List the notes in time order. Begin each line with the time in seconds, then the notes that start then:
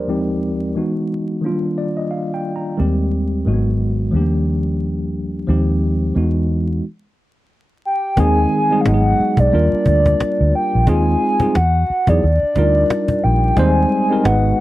Already playing: F3 A#3 G4 A#4 C5 D5
0.07 D#2 F3 G#3 C4 D#4 G4
0.75 E3 G#3 B3 D#4 F#4
1.41 D#3 F#3 A#3 D4
1.46 G3 F4
1.78 D5
1.97 D#5
2.11 F5
2.34 G5
2.56 A#5
2.77 D#2 D#3 G3 G#3 C4 G4
3.45 G#1 D#3 F#3 G#3 A#3 F#4
3.54 B3
4.11 D#2 F3 G3 A3 D4
4.16 A#3 G4
5.47 D#2 F3 G#3 C4 D#4 G4
6.15 E2 E3 G#3 B3 D#4 F#4
7.85 G5
8.17 D#2 D#3 G#3 C4 D#4 G#4 G#5, cajon bass
8.52 cajon slap
8.70 G3 G#3 C4 D#4 G#4
8.81 F5
8.85 G#1 F#3 G#3 B3 D#4 F#4 F#5, cajon slap
8.94 G#4
9.17 muted fingered electric bass stroke, cajon slap
9.37 B1 D5, cajon bass
9.52 D#2 G3 A#3 D4 F4 A#4, cajon slap
9.73 muted fingered electric bass stroke
9.86 D2, cajon bass
10.06 cajon bass, cajon slap
10.20 muted fingered electric bass stroke, cajon slap
10.41 D2
10.55 G5, cajon slap
10.75 A#1
10.87 D#2 G#3 C4 D#4 F4 G#4 G#5, cajon bass
11.21 cajon slap
11.40 G3 C4 D#4 F4 G#4, cajon bass
11.55 E2 F#5, cajon slap
11.87 muted fingered electric bass stroke, cajon slap
12.07 E2 F#3 B3 D#4 E4 G#4 D5, cajon bass
12.23 D#2, cajon slap
12.43 muted fingered electric bass stroke
12.55 D2 G3 D4 D#4 F4 A#4, cajon bass
12.77 cajon slap
12.90 cajon slap
13.08 cajon bass
13.24 A#1 G5, cajon slap
13.56 D#2 G3 G#3 C4 D#4 C5 G#5, cajon bass
13.91 cajon slap
14.10 G#3 C4 D#4 G4 A#4
14.23 G#1 G#3 B3 D#4 F#4 B4 F#5, cajon slap
14.56 cajon slap